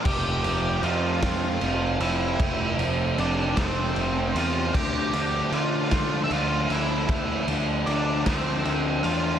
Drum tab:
CC |x-----|------|x-----|------|
RD |-xxxxx|xxxxxx|-xxxxx|xxxxxx|
SD |---o--|---o--|---o--|---o--|
BD |o--o--|o--o--|o--o--|o--o--|